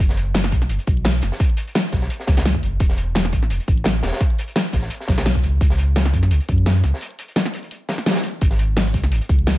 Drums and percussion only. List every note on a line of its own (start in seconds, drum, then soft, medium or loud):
0.09 snare soft
0.09 closed hi-hat soft
0.17 closed hi-hat medium
0.34 snare loud
0.34 closed hi-hat medium
0.44 snare medium
0.52 kick medium
0.52 closed hi-hat medium
0.62 snare soft
0.62 closed hi-hat soft
0.69 closed hi-hat medium
0.79 closed hi-hat soft
0.87 kick loud
0.87 closed hi-hat medium
0.97 closed hi-hat soft
1.05 snare loud
1.05 closed hi-hat medium
1.13 closed hi-hat soft
1.22 snare soft
1.22 closed hi-hat medium
1.32 snare medium
1.40 kick loud
1.40 closed hi-hat medium
1.50 closed hi-hat soft
1.57 closed hi-hat medium
1.68 closed hi-hat soft
1.75 snare loud
1.75 closed hi-hat medium
1.92 kick medium
1.92 snare soft
1.92 closed hi-hat medium
2.02 snare soft
2.02 closed hi-hat soft
2.10 closed hi-hat medium
2.20 snare soft
2.27 kick loud
2.27 snare loud
2.27 snare soft
2.27 closed hi-hat medium
2.37 snare loud
2.37 snare soft
2.37 closed hi-hat medium
2.37 closed hi-hat soft
2.45 snare loud
2.45 closed hi-hat medium
2.55 kick medium
2.63 closed hi-hat medium
2.80 kick loud
2.80 closed hi-hat medium
2.89 snare soft
2.89 closed hi-hat soft
2.98 closed hi-hat medium
3.15 snare loud
3.15 closed hi-hat medium
3.25 snare medium
3.33 kick medium
3.33 closed hi-hat medium
3.43 snare soft
3.43 closed hi-hat soft
3.50 closed hi-hat medium
3.50 closed hi-hat loud
3.60 closed hi-hat soft
3.68 kick loud
3.68 closed hi-hat medium
3.77 closed hi-hat soft
3.84 snare loud
3.84 closed hi-hat medium
3.95 closed hi-hat soft
4.03 snare medium
4.03 snare soft
4.03 closed hi-hat medium
4.07 snare medium
4.07 closed hi-hat medium
4.13 snare medium
4.13 closed hi-hat medium
4.16 snare medium
4.16 closed hi-hat medium
4.20 kick loud
4.20 closed hi-hat medium
4.30 closed hi-hat soft
4.38 closed hi-hat medium
4.48 closed hi-hat soft
4.56 snare loud
4.56 closed hi-hat medium
4.73 kick medium
4.73 snare soft
4.73 closed hi-hat medium
4.82 snare soft
4.82 closed hi-hat soft
4.90 closed hi-hat medium
5.00 snare soft
5.08 kick loud
5.08 snare loud
5.08 snare soft
5.08 closed hi-hat medium
5.18 snare loud
5.18 snare soft
5.18 closed hi-hat soft
5.18 closed hi-hat medium
5.25 snare loud
5.25 closed hi-hat medium
5.35 kick medium
5.43 closed hi-hat medium
5.61 kick loud
5.61 closed hi-hat loud
5.61 closed hi-hat medium
5.70 snare soft
5.70 closed hi-hat soft
5.78 closed hi-hat medium
5.96 snare loud
5.96 closed hi-hat loud
5.96 closed hi-hat medium
6.05 snare medium
6.14 kick medium
6.14 closed hi-hat medium
6.23 snare soft
6.23 closed hi-hat soft
6.31 closed hi-hat medium
6.31 closed hi-hat loud
6.40 closed hi-hat soft
6.49 kick loud
6.49 closed hi-hat medium
6.58 closed hi-hat soft
6.66 snare loud
6.66 closed hi-hat loud
6.66 closed hi-hat medium
6.76 closed hi-hat soft
6.84 snare soft
6.84 closed hi-hat medium
6.94 snare soft
7.01 closed hi-hat loud
7.01 closed hi-hat medium
7.10 closed hi-hat soft
7.19 closed hi-hat medium
7.28 closed hi-hat soft
7.36 snare loud
7.36 closed hi-hat medium
7.45 snare medium
7.54 closed hi-hat medium
7.63 closed hi-hat soft
7.71 closed hi-hat loud
7.71 closed hi-hat medium
7.89 snare loud
7.89 snare soft
7.89 closed hi-hat medium
7.98 snare soft
7.98 closed hi-hat soft
8.06 snare loud
8.06 snare medium
8.06 closed hi-hat medium
8.11 snare medium
8.11 closed hi-hat medium
8.15 snare loud
8.15 closed hi-hat medium
8.24 closed hi-hat medium
8.41 kick loud
8.41 closed hi-hat loud
8.51 snare soft
8.51 closed hi-hat soft
8.59 closed hi-hat medium
8.77 snare loud
8.77 closed hi-hat loud
8.77 closed hi-hat medium
8.94 kick medium
8.94 closed hi-hat medium
9.04 snare soft
9.04 closed hi-hat soft
9.12 closed hi-hat medium
9.12 closed hi-hat loud
9.21 closed hi-hat soft
9.29 kick loud
9.29 closed hi-hat medium
9.39 closed hi-hat soft
9.47 snare loud
9.47 closed hi-hat loud
9.47 closed hi-hat medium